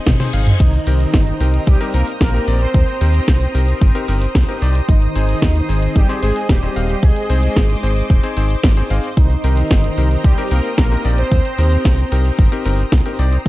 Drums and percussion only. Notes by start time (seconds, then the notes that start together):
0.06 kick, snare, closed hi-hat, mid tom
0.20 snare, closed hi-hat, mid tom
0.33 closed hi-hat
0.47 closed hi-hat, mid tom
0.60 kick, closed hi-hat, crash
0.74 closed hi-hat
0.87 open hi-hat
1.00 closed hi-hat
1.14 kick, snare, closed hi-hat
1.27 closed hi-hat
1.40 open hi-hat
1.54 closed hi-hat
1.67 kick, closed hi-hat
1.81 closed hi-hat
1.94 open hi-hat
2.08 closed hi-hat
2.21 kick, snare, closed hi-hat
2.34 closed hi-hat
2.48 open hi-hat
2.61 closed hi-hat
2.74 kick, closed hi-hat
2.88 closed hi-hat
3.01 open hi-hat
3.15 closed hi-hat
3.28 kick, snare, closed hi-hat
3.41 closed hi-hat
3.55 open hi-hat
3.68 closed hi-hat
3.81 kick, closed hi-hat
3.95 closed hi-hat
4.08 open hi-hat
4.22 closed hi-hat
4.35 kick, snare, closed hi-hat
4.49 closed hi-hat
4.62 open hi-hat
4.75 closed hi-hat
4.89 kick, closed hi-hat
5.02 closed hi-hat
5.15 open hi-hat
5.29 closed hi-hat
5.42 kick, snare, closed hi-hat
5.56 closed hi-hat
5.69 open hi-hat
5.82 closed hi-hat
5.96 kick, closed hi-hat
6.09 closed hi-hat
6.23 open hi-hat
6.36 closed hi-hat
6.49 kick, snare, closed hi-hat
6.63 closed hi-hat
6.76 open hi-hat
6.90 closed hi-hat
7.03 kick, closed hi-hat
7.16 closed hi-hat
7.30 open hi-hat
7.43 closed hi-hat
7.56 kick, snare, closed hi-hat
7.70 closed hi-hat
7.83 open hi-hat
7.97 closed hi-hat
8.10 kick, closed hi-hat
8.23 closed hi-hat
8.37 open hi-hat
8.50 closed hi-hat
8.64 kick, snare, closed hi-hat
8.77 closed hi-hat
8.90 open hi-hat
9.04 closed hi-hat
9.17 kick, closed hi-hat
9.31 closed hi-hat
9.44 open hi-hat
9.57 closed hi-hat
9.71 kick, snare, closed hi-hat
9.84 closed hi-hat
9.98 open hi-hat
10.11 closed hi-hat
10.24 kick, closed hi-hat
10.38 closed hi-hat
10.51 open hi-hat
10.65 closed hi-hat
10.78 kick, snare, closed hi-hat
10.91 closed hi-hat
11.05 open hi-hat
11.18 closed hi-hat
11.32 kick, closed hi-hat
11.45 closed hi-hat
11.58 open hi-hat
11.72 closed hi-hat
11.85 kick, snare, closed hi-hat
11.99 closed hi-hat
12.12 open hi-hat
12.25 closed hi-hat
12.39 kick, closed hi-hat
12.52 closed hi-hat
12.66 open hi-hat
12.79 closed hi-hat
12.92 kick, snare, closed hi-hat
13.06 closed hi-hat
13.19 open hi-hat
13.32 closed hi-hat